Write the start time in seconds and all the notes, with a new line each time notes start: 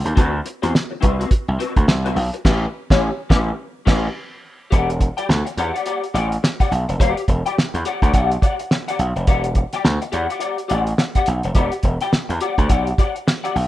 0.04 D#2, muted clean electric guitar stroke, closed hi-hat
0.15 D2 C4 F#4 B4, kick, closed hi-hat
0.33 muted clean electric guitar stroke
0.45 muted clean electric guitar stroke, closed hi-hat
0.62 E2 C4 F#4 C5, snare, closed hi-hat
0.73 muted clean electric guitar stroke, snare
0.91 muted clean electric guitar stroke
1.01 C2 C4 F#4 B4, kick, closed hi-hat
1.19 C4 F#4 B4, closed hi-hat
1.30 muted clean electric guitar stroke, muted slap bass stroke, kick, closed hi-hat
1.48 C2
1.59 C4 F#4 B4, closed hi-hat
1.76 D2, muted clean electric guitar stroke, kick, closed hi-hat
1.87 C2, muted clean electric guitar stroke, snare
2.05 C4 F#4 B4, closed hi-hat
2.16 B1, muted clean electric guitar stroke, open hi-hat
2.33 muted clean electric guitar stroke, closed hi-hat
2.45 A1 C#4 G4 B4, kick, snare, crash
2.90 A1 C#4 G4 C#5, kick, snare
3.30 A1 C#4 G4 B4, kick, snare
3.86 A1 C#4 G4 B4, kick, snare, crash
4.71 E1 G4 D5 F#5, kick, closed hi-hat
4.90 muted clean electric guitar stroke, closed hi-hat
5.00 muted clean electric guitar stroke, kick, closed hi-hat
5.17 G4 D5 G5, closed hi-hat
5.29 D2, muted clean electric guitar stroke, snare
5.45 muted clean electric guitar stroke, closed hi-hat
5.57 E2 G4 D5 F#5, closed hi-hat
5.73 G4 D5 F#5, closed hi-hat
5.86 G4 D5 F#5, closed hi-hat
6.03 muted clean electric guitar stroke, closed hi-hat
6.14 A1 G4 D5 F#5, closed hi-hat
6.31 muted clean electric guitar stroke, closed hi-hat
6.43 muted clean electric guitar stroke, snare
6.60 G4 D5 F#5, kick, closed hi-hat
6.71 B1, muted clean electric guitar stroke, closed hi-hat
6.89 F1, muted clean electric guitar stroke, closed hi-hat
7.00 E1 G4 D5 F#5, kick, closed hi-hat
7.17 muted clean electric guitar stroke, closed hi-hat
7.28 E1, muted clean electric guitar stroke, kick, closed hi-hat
7.46 G4 D5 G5, closed hi-hat
7.57 muted clean electric guitar stroke, muted slap bass stroke, snare
7.74 E2, muted clean electric guitar stroke, closed hi-hat
7.85 G4 D5 F#5, closed hi-hat
8.02 D2 G4 D5 F#5, kick, closed hi-hat
8.13 B1 G4 D5 F#5, kick, closed hi-hat
8.31 muted clean electric guitar stroke, closed hi-hat
8.42 G4 D5 F#5, kick, closed hi-hat
8.59 muted clean electric guitar stroke, closed hi-hat
8.71 muted clean electric guitar stroke, snare
8.88 G4 D5 F#5, closed hi-hat
8.99 B1, muted clean electric guitar stroke, closed hi-hat
9.16 F1, muted clean electric guitar stroke, closed hi-hat
9.27 E1 G4 D5 F#5, kick, closed hi-hat
9.44 muted clean electric guitar stroke, closed hi-hat
9.55 muted clean electric guitar stroke, kick, closed hi-hat
9.73 G4 D5 G5, snare, closed hi-hat
9.84 D2, muted clean electric guitar stroke, snare
10.02 muted clean electric guitar stroke, closed hi-hat
10.12 E2 G4 D5 F#5, closed hi-hat
10.29 G4 D5 F#5, closed hi-hat
10.39 G4 D5 F#5, closed hi-hat
10.57 muted clean electric guitar stroke, closed hi-hat
10.68 A1 G4 D5 F#5, closed hi-hat
10.86 muted clean electric guitar stroke, closed hi-hat
10.98 muted clean electric guitar stroke, snare
11.15 G4 D5 F#5, kick, closed hi-hat
11.26 B1, muted clean electric guitar stroke, closed hi-hat
11.43 F1, muted clean electric guitar stroke, closed hi-hat
11.55 E1 G4 D5 F#5, kick, closed hi-hat
11.72 muted clean electric guitar stroke, closed hi-hat
11.83 E1, muted clean electric guitar stroke, kick, closed hi-hat
12.01 G4 D5 G5, snare, closed hi-hat
12.13 muted clean electric guitar stroke, muted slap bass stroke, snare
12.29 E2, muted clean electric guitar stroke, closed hi-hat
12.41 G4 D5 F#5, closed hi-hat
12.58 D2 G4 D5 F#5, kick, closed hi-hat
12.69 B1 G4 D5 F#5, kick, closed hi-hat
12.87 muted clean electric guitar stroke, closed hi-hat
12.98 G4 D5 F#5, kick, closed hi-hat
13.15 muted clean electric guitar stroke, closed hi-hat
13.27 muted clean electric guitar stroke, snare
13.44 G4 D5 F#5, closed hi-hat
13.55 B1, muted clean electric guitar stroke, open hi-hat